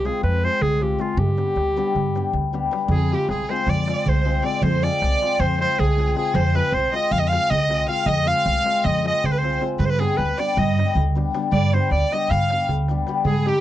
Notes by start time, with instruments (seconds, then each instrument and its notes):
0.04 hammered dulcimer G#3 C4 F4 G#4, clarinet G#4, darbuka tek
0.14 darbuka tek
0.23 upright bass F2, clarinet B4, darbuka tek
0.43 hammered dulcimer G#3 C4 F4 G#4, clarinet C5, darbuka tek
0.62 upright bass C2, clarinet G#4, darbuka dum
0.73 darbuka tek
0.81 hammered dulcimer G#3 C4 F4 G#4, clarinet G4, darbuka tek
0.91 darbuka tek
0.98 hammered dulcimer G#3 C4 F4 G#4, clarinet F4, darbuka tek
1.17 upright bass G2, clarinet G4, darbuka dum
1.29 darbuka tek
1.37 hammered dulcimer G3 B3 D4 G4, darbuka tek
1.48 darbuka tek
1.56 upright bass D2, darbuka tek
1.76 hammered dulcimer G3 B3 D4 G4, darbuka tek
1.87 darbuka tek
1.95 upright bass G2, darbuka tek, darbuka dum
2.15 hammered dulcimer G3 B3 D4 G4, darbuka tek
2.26 darbuka tek
2.33 upright bass D2, darbuka dum
2.53 hammered dulcimer G3 B3 D4 G4, darbuka tek
2.71 hammered dulcimer G3 B3 D4 G4, darbuka tek
2.88 upright bass F2, clarinet G#4, violin G#4, darbuka dum
3.02 darbuka tek
3.10 hammered dulcimer G#3 C4 F4 G#4, clarinet G4, violin G4
3.20 darbuka tek
3.29 upright bass C2, violin G#4, clarinet G#4, darbuka tek
3.39 darbuka tek
3.49 hammered dulcimer G#3 C4 F4 G#4, clarinet C5, violin C5, darbuka tek
3.59 darbuka tek
3.67 upright bass F2, violin D5, clarinet D5, darbuka tek, darbuka dum
3.77 darbuka tek
3.87 hammered dulcimer G#3 C4 F4 G#4, darbuka tek
3.98 darbuka tek
4.06 upright bass C2, violin C5, clarinet C5, darbuka dum
4.25 hammered dulcimer G#3 C4 F4 G#4, darbuka tek
4.35 darbuka tek
4.43 hammered dulcimer G#3 C4 F4 G#4, violin D5, clarinet D5, darbuka tek
4.61 upright bass F2, violin C5, clarinet C5, darbuka dum
4.73 darbuka tek
4.82 hammered dulcimer G#3 C4 F4 G#4, violin D5, clarinet D5, darbuka tek
4.93 darbuka tek
5.02 upright bass C2, darbuka tek
5.12 darbuka tek
5.21 hammered dulcimer G#3 C4 F4 G#4, darbuka tek
5.32 darbuka tek
5.40 upright bass F2, violin C5, clarinet C5, darbuka tek, darbuka dum
5.52 darbuka tek
5.59 hammered dulcimer G#3 C4 F4 G#4, clarinet C5, violin C5, darbuka tek
5.71 darbuka tek
5.79 upright bass C2, violin G#4, clarinet G#4, darbuka dum
5.97 hammered dulcimer G#3 C4 F4 G#4, darbuka tek
6.09 darbuka tek
6.15 hammered dulcimer G#3 C4 F4 G#4, violin G#4, clarinet G#4, darbuka tek
6.34 upright bass F2, violin C5, clarinet C5, darbuka dum
6.45 darbuka tek
6.54 hammered dulcimer G#3 C4 F4 G#4, clarinet B4, violin B4, darbuka tek
6.64 darbuka tek
6.72 upright bass C2, violin C5, clarinet C5, darbuka tek
6.92 hammered dulcimer G#3 C4 F4 G#4, violin D#5, clarinet D#5, darbuka tek
7.03 darbuka tek
7.11 upright bass F2, violin F5, clarinet F5, darbuka tek, darbuka dum
7.18 violin D#5, clarinet D#5
7.23 violin F5, darbuka tek
7.29 hammered dulcimer G#3 C4, clarinet F5, darbuka tek
7.33 hammered dulcimer F4 G#4
7.41 darbuka tek
7.50 upright bass C2, clarinet D#5, violin D#5, darbuka dum
7.69 hammered dulcimer G#3 C4 F4 G#4, darbuka tek
7.80 darbuka tek
7.87 hammered dulcimer G#3 C4 F4 G#4, clarinet F5, violin F5, darbuka tek
8.06 upright bass F2, clarinet D#5, violin D#5, darbuka dum
8.17 darbuka tek
8.25 hammered dulcimer G#3 C4 F4 G#4, violin F5, clarinet F5, darbuka tek
8.46 upright bass C2, darbuka tek
8.56 darbuka tek
8.64 hammered dulcimer G#3 C4 F4 G#4, darbuka tek
8.76 darbuka tek
8.84 upright bass F2, violin D#5, clarinet D#5, darbuka tek, darbuka dum
8.96 darbuka tek
9.03 hammered dulcimer G#3 C4 F4 G#4, darbuka tek
9.07 violin D#5, clarinet D#5
9.24 upright bass C2, clarinet C5, violin C5, darbuka dum
9.31 clarinet B4, violin B4, darbuka tek
9.38 clarinet C5, violin C5
9.42 hammered dulcimer G#3 C4 F4 G#4, darbuka tek
9.60 hammered dulcimer G#3 C4 F4 G#4, darbuka tek
9.72 darbuka tek
9.79 upright bass G2, violin B4, clarinet B4, darbuka dum
9.84 violin C5, clarinet C5
9.89 violin B4, clarinet B4, darbuka tek
9.99 hammered dulcimer G3 B3 D4 G4, violin G#4, clarinet G#4, darbuka tek
10.17 upright bass D2, clarinet B4, violin B4, darbuka tek
10.38 hammered dulcimer G3 B3 D4 G4, violin D5, clarinet D5, darbuka tek
10.49 darbuka tek
10.57 upright bass G2, violin D#5, clarinet D#5, darbuka tek, darbuka dum
10.78 hammered dulcimer G3 B3 D4 G4, darbuka tek
10.87 darbuka tek
10.95 upright bass D2, darbuka dum
11.15 hammered dulcimer G3 B3 D4 G4, darbuka tek
11.25 darbuka tek
11.34 hammered dulcimer G3 B3 D4 G4, darbuka tek
11.52 upright bass G2, clarinet D5, violin D5, darbuka dum
11.73 hammered dulcimer G3 B3 D4 G4, clarinet C5, violin C5, darbuka tek
11.83 darbuka tek
11.91 upright bass D2, clarinet D5, violin D5, darbuka tek
12.12 hammered dulcimer G3 B3 D4 G4, clarinet D#5, violin D#5, darbuka tek
12.21 darbuka tek
12.30 upright bass G2, clarinet F5, violin F5, darbuka tek, darbuka dum
12.40 darbuka tek
12.50 hammered dulcimer G3 B3 D4 G4, darbuka tek
12.60 darbuka tek
12.69 upright bass D2, darbuka dum
12.88 hammered dulcimer G3 B3 D4 G4, darbuka tek
12.98 darbuka tek
13.07 hammered dulcimer G3 B3 D4 G4, darbuka tek
13.24 upright bass G#2, clarinet G#4, violin G#4, darbuka dum
13.36 darbuka tek
13.45 hammered dulcimer G#3 C4 D#4 G#4, clarinet G4, violin G4, darbuka tek
13.55 darbuka tek